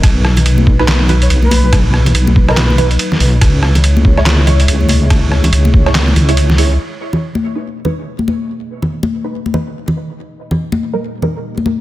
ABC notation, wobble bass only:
X:1
M:4/4
L:1/8
Q:"Swing 16ths" 1/4=142
K:G#m
V:1 name="Wobble bass" clef=bass
B,,,6 B,,,2- | B,,,2 B,,,4 z B,,, | C,,6 C,,2- | C,,2 C,,3 C,,3 |
z8 | z8 | z8 |]